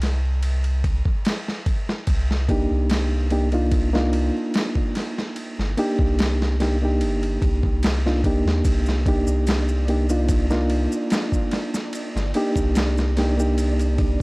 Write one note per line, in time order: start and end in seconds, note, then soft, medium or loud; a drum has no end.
0.00 1.01 C2 medium
0.00 snare soft
0.00 ride medium
0.43 ride medium
0.64 ride soft
0.84 kick medium
0.84 ride medium
1.05 kick medium
1.25 snare loud
1.25 ride medium
1.48 snare soft
1.66 kick medium
1.66 ride medium
1.89 snare soft
2.07 2.66 C2 medium
2.07 kick loud
2.07 ride medium
2.31 snare soft
2.49 3.26 A#3 medium
2.49 3.26 D4 medium
2.49 3.27 D#4 medium
2.49 3.27 G4 medium
2.49 kick medium
2.49 ride medium
2.71 4.30 C2 medium
2.90 snare loud
2.90 ride medium
3.30 3.47 A#3 medium
3.30 3.48 D4 medium
3.30 3.48 D#4 medium
3.30 3.48 G4 medium
3.30 ride medium
3.52 3.88 A#3 medium
3.52 3.89 D4 medium
3.52 3.89 D#4 medium
3.52 3.89 F4 medium
3.52 ride soft
3.71 kick loud
3.71 ride medium
3.93 5.72 A#3 medium
3.93 5.73 D4 medium
3.93 5.73 D#4 medium
3.93 5.74 F4 loud
3.93 snare soft
4.13 ride medium
4.54 snare loud
4.54 ride medium
4.75 kick medium
4.95 snare soft
4.95 ride medium
5.18 snare soft
5.36 ride medium
5.58 5.75 G1 medium
5.58 snare soft
5.77 6.55 A#3 medium
5.77 6.55 D4 medium
5.77 6.55 D#4 medium
5.77 6.56 G4 loud
5.77 ride medium
5.99 7.03 C2 medium
5.99 kick medium
6.19 snare loud
6.19 ride medium
6.42 snare soft
6.60 6.76 A#3 medium
6.60 6.76 D4 medium
6.60 6.76 D#4 medium
6.60 6.77 G4 medium
6.60 snare soft
6.60 ride medium
6.82 8.00 A#3 medium
6.82 8.01 D4 medium
6.82 8.01 D#4 medium
6.82 8.02 G4 medium
7.01 7.37 G1 medium
7.01 ride medium
7.23 ride soft
7.42 8.41 C2 loud
7.42 kick medium
7.42 ride medium
7.63 kick medium
7.83 snare loud
7.83 ride medium
8.06 8.20 A#3 medium
8.06 8.20 D4 medium
8.06 8.20 D#4 medium
8.06 8.20 F4 medium
8.06 snare soft
8.24 9.02 A#3 medium
8.24 9.02 D4 medium
8.24 9.02 D#4 medium
8.24 9.03 G4 medium
8.24 kick medium
8.24 ride medium
8.45 8.62 D#2 loud
8.45 snare medium
8.65 9.23 C2 medium
8.65 14.22 D4 medium
8.65 14.22 D5 medium
8.65 kick loud
8.65 ride medium
8.65 maracas medium
8.86 snare soft
8.86 maracas soft
9.06 9.84 A#3 medium
9.06 9.84 D4 medium
9.06 9.84 D#4 medium
9.06 9.85 G4 medium
9.06 kick medium
9.06 ride medium
9.26 10.87 C2 medium
9.26 maracas medium
9.47 snare loud
9.47 ride medium
9.47 maracas medium
9.68 maracas soft
9.88 10.04 A#3 medium
9.88 10.05 D4 medium
9.88 10.05 D#4 medium
9.88 10.05 G4 medium
9.88 ride medium
10.09 10.46 A#3 medium
10.09 10.46 D4 medium
10.09 10.46 D#4 medium
10.09 10.46 F4 medium
10.09 ride soft
10.09 maracas medium
10.28 kick loud
10.28 ride medium
10.28 maracas medium
10.50 12.30 A#3 loud
10.50 12.30 D4 medium
10.50 12.31 D#4 medium
10.50 12.31 F4 loud
10.50 snare soft
10.50 maracas soft
10.70 ride medium
10.92 maracas medium
11.10 snare loud
11.10 ride medium
11.10 maracas medium
11.32 kick medium
11.32 maracas soft
11.51 snare soft
11.51 ride medium
11.74 snare soft
11.74 maracas medium
11.93 ride medium
11.93 maracas medium
12.15 12.32 G1 medium
12.15 snare soft
12.15 maracas soft
12.34 13.12 A#3 medium
12.34 13.13 D4 medium
12.34 13.13 D#4 medium
12.34 13.13 G4 loud
12.34 ride medium
12.56 14.16 C2 loud
12.56 kick medium
12.56 maracas medium
12.75 snare loud
12.75 ride medium
12.75 maracas medium
12.98 snare soft
12.98 maracas soft
13.17 13.33 A#3 medium
13.17 13.34 D4 medium
13.17 13.34 D#4 medium
13.17 13.34 G4 medium
13.17 snare soft
13.17 ride medium
13.37 14.22 A#3 medium
13.37 14.22 D4 medium
13.37 14.22 D#4 medium
13.37 14.22 G4 medium
13.37 maracas medium
13.58 ride medium
13.58 maracas medium
13.79 ride soft
13.79 maracas soft
13.98 kick medium
13.98 ride medium